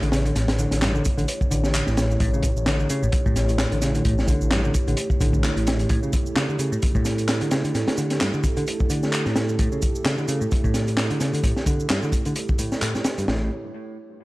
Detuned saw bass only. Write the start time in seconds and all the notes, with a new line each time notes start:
0.02 A1
0.36 A1
0.71 A1
1.18 A1
1.51 A1
1.87 A1
2.20 A1
2.57 A1
3.03 A1
3.36 A1
3.72 A1
4.05 A1
4.41 A1
4.87 A1
5.21 A1
5.56 A1
13.28 A1